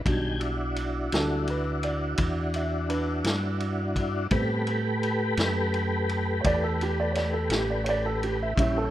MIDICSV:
0, 0, Header, 1, 5, 480
1, 0, Start_track
1, 0, Tempo, 710059
1, 31, Time_signature, 12, 3, 24, 8
1, 6019, End_track
2, 0, Start_track
2, 0, Title_t, "Grand piano"
2, 0, Program_c, 0, 0
2, 34, Note_on_c, 0, 54, 45
2, 38, Note_on_c, 0, 55, 40
2, 46, Note_on_c, 0, 62, 50
2, 352, Note_off_c, 0, 54, 0
2, 354, Note_off_c, 0, 55, 0
2, 358, Note_off_c, 0, 62, 0
2, 765, Note_on_c, 0, 54, 35
2, 767, Note_on_c, 0, 55, 32
2, 772, Note_on_c, 0, 62, 38
2, 772, Note_on_c, 0, 69, 66
2, 975, Note_off_c, 0, 54, 0
2, 976, Note_off_c, 0, 55, 0
2, 979, Note_off_c, 0, 62, 0
2, 995, Note_off_c, 0, 69, 0
2, 1014, Note_on_c, 0, 71, 59
2, 1236, Note_off_c, 0, 71, 0
2, 1243, Note_on_c, 0, 74, 62
2, 1703, Note_off_c, 0, 74, 0
2, 1730, Note_on_c, 0, 76, 60
2, 1949, Note_on_c, 0, 62, 54
2, 1954, Note_off_c, 0, 76, 0
2, 1956, Note_on_c, 0, 71, 62
2, 2912, Note_on_c, 0, 55, 43
2, 2914, Note_on_c, 0, 59, 43
2, 2916, Note_on_c, 0, 60, 45
2, 3232, Note_off_c, 0, 55, 0
2, 3233, Note_off_c, 0, 59, 0
2, 3234, Note_off_c, 0, 60, 0
2, 3364, Note_off_c, 0, 62, 0
2, 3368, Note_off_c, 0, 71, 0
2, 4331, Note_on_c, 0, 73, 54
2, 4359, Note_off_c, 0, 73, 0
2, 4364, Note_on_c, 0, 74, 78
2, 4470, Note_off_c, 0, 74, 0
2, 4485, Note_on_c, 0, 69, 65
2, 4591, Note_off_c, 0, 69, 0
2, 4615, Note_on_c, 0, 67, 71
2, 4716, Note_off_c, 0, 67, 0
2, 4730, Note_on_c, 0, 74, 71
2, 4812, Note_on_c, 0, 73, 46
2, 4833, Note_off_c, 0, 74, 0
2, 4840, Note_off_c, 0, 73, 0
2, 4843, Note_on_c, 0, 74, 60
2, 4950, Note_off_c, 0, 74, 0
2, 4957, Note_on_c, 0, 69, 56
2, 5067, Note_off_c, 0, 69, 0
2, 5089, Note_on_c, 0, 67, 64
2, 5193, Note_off_c, 0, 67, 0
2, 5207, Note_on_c, 0, 74, 58
2, 5302, Note_on_c, 0, 73, 61
2, 5313, Note_off_c, 0, 74, 0
2, 5327, Note_off_c, 0, 73, 0
2, 5333, Note_on_c, 0, 74, 80
2, 5436, Note_off_c, 0, 74, 0
2, 5448, Note_on_c, 0, 69, 66
2, 5553, Note_off_c, 0, 69, 0
2, 5568, Note_on_c, 0, 67, 61
2, 5673, Note_off_c, 0, 67, 0
2, 5696, Note_on_c, 0, 76, 63
2, 5797, Note_off_c, 0, 76, 0
2, 5800, Note_on_c, 0, 55, 47
2, 5800, Note_on_c, 0, 61, 38
2, 5806, Note_on_c, 0, 64, 51
2, 5813, Note_on_c, 0, 76, 70
2, 5916, Note_off_c, 0, 76, 0
2, 5933, Note_on_c, 0, 69, 70
2, 6019, Note_off_c, 0, 55, 0
2, 6019, Note_off_c, 0, 61, 0
2, 6019, Note_off_c, 0, 64, 0
2, 6019, Note_off_c, 0, 69, 0
2, 6019, End_track
3, 0, Start_track
3, 0, Title_t, "Tonewheel organ"
3, 0, Program_c, 1, 16
3, 42, Note_on_c, 1, 51, 51
3, 45, Note_on_c, 1, 80, 56
3, 46, Note_on_c, 1, 79, 54
3, 268, Note_on_c, 1, 66, 60
3, 272, Note_on_c, 1, 64, 62
3, 276, Note_off_c, 1, 51, 0
3, 278, Note_off_c, 1, 80, 0
3, 279, Note_off_c, 1, 79, 0
3, 280, Note_on_c, 1, 62, 66
3, 2884, Note_off_c, 1, 66, 0
3, 2886, Note_off_c, 1, 64, 0
3, 2890, Note_off_c, 1, 62, 0
3, 2918, Note_on_c, 1, 71, 55
3, 2919, Note_on_c, 1, 57, 55
3, 2921, Note_on_c, 1, 67, 62
3, 5770, Note_off_c, 1, 57, 0
3, 5770, Note_off_c, 1, 71, 0
3, 5771, Note_off_c, 1, 67, 0
3, 5781, Note_on_c, 1, 64, 59
3, 5786, Note_on_c, 1, 61, 59
3, 5789, Note_on_c, 1, 67, 59
3, 6019, Note_off_c, 1, 61, 0
3, 6019, Note_off_c, 1, 64, 0
3, 6019, Note_off_c, 1, 67, 0
3, 6019, End_track
4, 0, Start_track
4, 0, Title_t, "Fingered electric bass"
4, 0, Program_c, 2, 33
4, 37, Note_on_c, 2, 35, 79
4, 733, Note_off_c, 2, 35, 0
4, 761, Note_on_c, 2, 38, 79
4, 1455, Note_off_c, 2, 38, 0
4, 1477, Note_on_c, 2, 40, 72
4, 2173, Note_off_c, 2, 40, 0
4, 2192, Note_on_c, 2, 43, 82
4, 2891, Note_off_c, 2, 43, 0
4, 2912, Note_on_c, 2, 45, 85
4, 3611, Note_off_c, 2, 45, 0
4, 3634, Note_on_c, 2, 42, 86
4, 4332, Note_off_c, 2, 42, 0
4, 4358, Note_on_c, 2, 40, 78
4, 5054, Note_off_c, 2, 40, 0
4, 5065, Note_on_c, 2, 33, 90
4, 5768, Note_off_c, 2, 33, 0
4, 5793, Note_on_c, 2, 34, 88
4, 6019, Note_off_c, 2, 34, 0
4, 6019, End_track
5, 0, Start_track
5, 0, Title_t, "Drums"
5, 39, Note_on_c, 9, 36, 96
5, 42, Note_on_c, 9, 51, 66
5, 106, Note_off_c, 9, 36, 0
5, 110, Note_off_c, 9, 51, 0
5, 275, Note_on_c, 9, 51, 48
5, 343, Note_off_c, 9, 51, 0
5, 516, Note_on_c, 9, 51, 60
5, 583, Note_off_c, 9, 51, 0
5, 758, Note_on_c, 9, 51, 75
5, 770, Note_on_c, 9, 38, 102
5, 826, Note_off_c, 9, 51, 0
5, 837, Note_off_c, 9, 38, 0
5, 997, Note_on_c, 9, 51, 53
5, 1064, Note_off_c, 9, 51, 0
5, 1236, Note_on_c, 9, 51, 55
5, 1304, Note_off_c, 9, 51, 0
5, 1470, Note_on_c, 9, 51, 79
5, 1477, Note_on_c, 9, 36, 97
5, 1538, Note_off_c, 9, 51, 0
5, 1544, Note_off_c, 9, 36, 0
5, 1715, Note_on_c, 9, 51, 58
5, 1783, Note_off_c, 9, 51, 0
5, 1958, Note_on_c, 9, 51, 59
5, 2026, Note_off_c, 9, 51, 0
5, 2193, Note_on_c, 9, 51, 75
5, 2205, Note_on_c, 9, 38, 92
5, 2261, Note_off_c, 9, 51, 0
5, 2272, Note_off_c, 9, 38, 0
5, 2436, Note_on_c, 9, 51, 54
5, 2503, Note_off_c, 9, 51, 0
5, 2676, Note_on_c, 9, 36, 65
5, 2678, Note_on_c, 9, 51, 54
5, 2744, Note_off_c, 9, 36, 0
5, 2746, Note_off_c, 9, 51, 0
5, 2911, Note_on_c, 9, 51, 69
5, 2916, Note_on_c, 9, 36, 95
5, 2979, Note_off_c, 9, 51, 0
5, 2983, Note_off_c, 9, 36, 0
5, 3155, Note_on_c, 9, 51, 51
5, 3223, Note_off_c, 9, 51, 0
5, 3400, Note_on_c, 9, 51, 49
5, 3468, Note_off_c, 9, 51, 0
5, 3632, Note_on_c, 9, 51, 73
5, 3643, Note_on_c, 9, 38, 101
5, 3699, Note_off_c, 9, 51, 0
5, 3711, Note_off_c, 9, 38, 0
5, 3878, Note_on_c, 9, 51, 45
5, 3946, Note_off_c, 9, 51, 0
5, 4119, Note_on_c, 9, 51, 49
5, 4186, Note_off_c, 9, 51, 0
5, 4356, Note_on_c, 9, 51, 73
5, 4357, Note_on_c, 9, 36, 99
5, 4424, Note_off_c, 9, 51, 0
5, 4425, Note_off_c, 9, 36, 0
5, 4604, Note_on_c, 9, 51, 52
5, 4672, Note_off_c, 9, 51, 0
5, 4836, Note_on_c, 9, 51, 59
5, 4847, Note_on_c, 9, 38, 30
5, 4903, Note_off_c, 9, 51, 0
5, 4915, Note_off_c, 9, 38, 0
5, 5069, Note_on_c, 9, 51, 76
5, 5081, Note_on_c, 9, 38, 86
5, 5137, Note_off_c, 9, 51, 0
5, 5148, Note_off_c, 9, 38, 0
5, 5313, Note_on_c, 9, 51, 62
5, 5380, Note_off_c, 9, 51, 0
5, 5562, Note_on_c, 9, 51, 53
5, 5630, Note_off_c, 9, 51, 0
5, 5797, Note_on_c, 9, 36, 103
5, 5804, Note_on_c, 9, 51, 76
5, 5864, Note_off_c, 9, 36, 0
5, 5872, Note_off_c, 9, 51, 0
5, 6019, End_track
0, 0, End_of_file